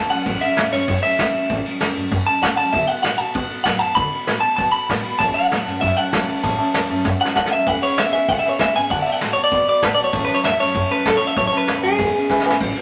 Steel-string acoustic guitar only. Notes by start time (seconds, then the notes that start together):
Already playing: E3 F#3 A3
0.10 F#3 A3 C#4 A4
0.26 A2 E3 F#3 A3 C#4 A4
0.41 F#3 A3 C#4 A4
0.56 A2 E3 F#3 A3 C#4 A4
0.71 F#3 A3 C#4 A4
0.86 F#3 A3 C#4 A4
1.02 F#3 A3 C#4 A4
1.17 A2 E3 F#3 A3 A4
1.34 F#3 A3 C#4 A4
1.49 A2 E3 F#3 A3 C#4 A4
1.64 F#3 A3 C#4 A4
1.80 A2 E3 F#3 A3 C#4 A4
1.95 F#3 A3 C#4 A4
2.10 F#3 A3 C#4 A4
2.26 F#3 A3 C#4 A4
2.42 A2 E3 F#3 A3 C#4 A4
2.58 F#3 A3 C#4 A4
2.74 D3 F#3 B3 F#4 A4
2.89 B3 F#4 A4
3.05 D3 F#3 B3 F#4 A4
3.19 B3 F#4 A4
3.34 F#3 B3 F#4 A4
3.50 B3 F#4 A4
3.65 D3 F#3 B3 F#4 A4
3.80 B3 F#4 A4
3.97 D3 F#3 B3 F#4 A4
4.11 B3 F#4 A4
4.27 D3 F#3 B3 F#4 A4
4.43 B3 F#4 A4
4.58 F#3 B3 F#4 A4
4.72 B3 F#4 A4
4.89 D3 F#3 B3 F#4 A4
5.04 B3 F#4 A4
5.20 A2 E3 F#3 A3 C#4 A4
5.35 F#3 A3 C#4 A4
5.50 A2 E3 F#3 A3 C#4 A4
5.66 F#3 A3 C#4 A4
5.81 F#3 A3 C#4 A4
5.97 F#3 A3 C#4 A4
6.13 A2 E3 F#3 A3 C#4 A4
6.28 F#3 A3 C#4 A4
6.43 A2 E3 F#3 A3 C#4 A4
6.58 F#3 A3 C#4 A4
6.74 A2 E3 F#3 A3 C#4 A4
6.89 F#3 A3 C#4 A4
7.04 F#3 A3 C#4 A4
7.20 F#3 A3 C#4 A4
7.35 A2 E3 F#3 A3 C#4 A4
7.52 F#3 A3 C#4 A4
7.66 E3 G#3 B3 C#4 G#4
7.81 B3 C#4 G#4
7.97 E3 G#3 B3 C#4 G#4
8.12 B3 C#4 G#4
8.28 G#3 B3 C#4
8.43 B3 C#4 G#4
8.58 E3 G#3 B3 C#4 G#4
8.73 B3 C#4 G#4
8.89 D3 F#3 B3 F#4 A4
9.05 B3 F#4 A4
9.20 D3 F#3 B3 F#4 A4
9.35 B3 F#4 A4
9.51 F#3 B3 F#4 A4
9.66 B3 F#4 A4
9.82 D3 F#3 B3 F#4 A4
9.97 B3 F#4 A4
10.13 A2 E3 F#3 A3 C#4 A4
10.27 F#3 A3 C#4 A4
10.42 A2 E3 F#3 A3 C#4 A4
10.58 F#3 A3 C#4 A4
10.74 F#3 A3
10.89 F#3 A3 C#4 A4
11.05 A2 E3 F#3 A3 C#4 A4
11.21 F#3 A3 C#4 A4
11.36 A2 E3 F#3 A3 C#4 A4
11.52 F#3 A3 C#4 A4
11.68 A2 E3 F#3 A3 C#4 A4
11.82 F#3 A3 C#4 A4
11.98 G#3 B3 C#4 G#4
12.14 B3 C#4 G#4
12.29 E3 G#3 B3 C#4 G#4
12.44 B3 C#4 G#4
12.60 A2 E3 F#3 A3 C#4 A4
12.75 F#3 A3 C#4 A4